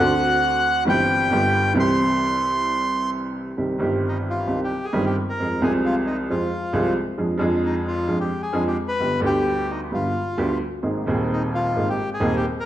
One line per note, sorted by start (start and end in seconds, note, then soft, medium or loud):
0.00 0.83 D2 medium
0.00 0.83 D3 medium
0.00 0.83 A3 medium
0.00 0.84 C4 medium
0.00 0.84 F#4 medium
0.00 0.84 F#5 loud
0.85 1.30 G1 medium
0.85 0.87 G2 medium
0.85 1.30 G2 medium
0.85 1.29 E3 medium
0.85 1.30 G3 medium
0.85 1.30 C4 medium
0.85 1.31 G4 medium
0.89 1.74 G5 loud
1.30 1.75 G1 medium
1.30 1.75 G2 medium
1.30 1.74 D3 medium
1.30 1.73 G3 medium
1.30 1.75 B3 medium
1.30 1.76 G4 medium
1.74 3.49 C2 medium
1.74 3.49 C3 medium
1.74 3.48 E3 medium
1.74 3.49 G3 medium
1.74 3.50 C4 medium
1.74 3.50 G4 medium
1.80 3.10 C6 loud
3.57 3.78 C2 soft
3.57 3.77 C3 soft
3.57 3.77 D#3 soft
3.57 3.78 G3 soft
3.57 3.78 C4 soft
3.57 3.77 G4 soft
3.78 4.45 G1 medium
3.78 4.45 G2 medium
3.78 4.45 D#3 medium
3.78 4.45 G3 medium
3.78 4.46 C4 medium
3.78 4.46 G4 medium
4.09 4.18 D#4 medium
4.30 4.60 F4 medium
4.47 4.68 C2 medium
4.47 4.68 C3 soft
4.47 4.68 D#3 soft
4.47 4.67 G3 soft
4.47 4.68 C4 soft
4.47 4.68 G4 soft
4.64 4.86 G4 medium
4.85 5.05 G#4 medium
4.93 5.13 G1 medium
4.93 5.13 G2 medium
4.93 5.13 D#3 medium
4.93 5.13 G3 medium
4.93 5.13 C4 medium
4.93 5.13 G4 medium
5.06 5.16 G4 medium
5.29 5.64 A#4 medium
5.39 5.59 F2 soft
5.39 5.58 F3 soft
5.39 5.59 G#3 soft
5.39 5.59 C4 soft
5.39 5.59 G#4 soft
5.60 6.26 C2 medium
5.60 6.26 C3 medium
5.60 6.25 F3 medium
5.60 6.25 G#3 medium
5.60 6.26 C4 medium
5.60 5.73 G#4 medium
5.60 6.27 G#4 medium
5.86 5.95 F4 medium
6.07 6.17 D#4 medium
6.30 6.49 F2 medium
6.30 6.49 F3 medium
6.30 6.49 G#3 soft
6.30 6.49 C4 soft
6.30 6.93 F4 medium
6.30 6.49 G#4 soft
6.73 6.93 C2 medium
6.73 6.92 C3 medium
6.73 6.93 F3 medium
6.73 6.93 G#3 medium
6.73 6.93 C4 medium
6.73 6.93 G#4 medium
7.18 7.38 F2 medium
7.18 7.36 F3 medium
7.18 7.37 G#3 soft
7.18 7.37 D4 soft
7.18 7.38 G#4 soft
7.38 8.05 F2 medium
7.38 8.05 F3 medium
7.38 8.05 G#3 medium
7.38 8.06 D4 medium
7.38 8.06 G#4 medium
7.65 7.75 D#4 medium
7.88 8.19 F4 medium
8.08 8.28 F2 medium
8.08 8.28 F3 medium
8.08 8.28 G#3 soft
8.08 8.28 D4 soft
8.08 8.28 G#4 medium
8.21 8.42 G4 medium
8.42 8.64 G#4 medium
8.53 8.73 F2 medium
8.53 8.73 F3 medium
8.53 8.73 G#3 medium
8.53 8.73 D4 medium
8.53 8.73 G#4 medium
8.67 8.77 G4 medium
8.88 9.20 B4 loud
9.00 9.20 G1 medium
9.00 9.20 G2 soft
9.00 9.19 D3 soft
9.00 9.19 G3 soft
9.00 9.19 B3 soft
9.00 9.20 G4 soft
9.20 9.88 D2 medium
9.20 9.88 D3 medium
9.20 9.87 G3 medium
9.20 9.88 B3 medium
9.20 9.88 G4 medium
9.26 9.71 G4 medium
9.71 9.81 D#4 medium
9.91 10.11 G1 soft
9.91 10.11 G2 soft
9.91 10.11 D3 soft
9.91 10.11 G3 soft
9.91 10.11 B3 soft
9.91 10.58 F4 medium
9.91 10.11 G4 soft
10.37 10.57 D2 medium
10.37 10.57 D3 medium
10.37 10.57 G3 medium
10.37 10.57 B3 medium
10.37 10.57 G4 medium
10.83 11.03 G#1 soft
10.83 11.03 G#2 soft
10.83 11.03 D#3 soft
10.83 11.03 A#3 soft
10.83 11.03 C4 soft
10.83 11.03 G#4 soft
11.06 11.72 D#1 medium
11.06 11.73 D#2 medium
11.06 11.72 D#3 medium
11.06 11.72 A#3 medium
11.06 11.73 C4 medium
11.06 11.74 G#4 medium
11.33 11.43 D#4 medium
11.55 11.89 F4 medium
11.76 11.95 G#1 soft
11.76 11.95 G#2 medium
11.76 11.95 D#3 soft
11.76 11.95 A#3 soft
11.76 11.95 C4 soft
11.76 11.95 G#4 soft
11.90 12.10 G4 medium
12.14 12.35 G#4 medium
12.20 12.40 D#1 medium
12.20 12.40 D#2 medium
12.20 12.40 D#3 medium
12.20 12.40 A#3 medium
12.20 12.40 C4 medium
12.20 12.40 G#4 medium
12.36 12.46 G4 medium
12.60 12.66 A#4 loud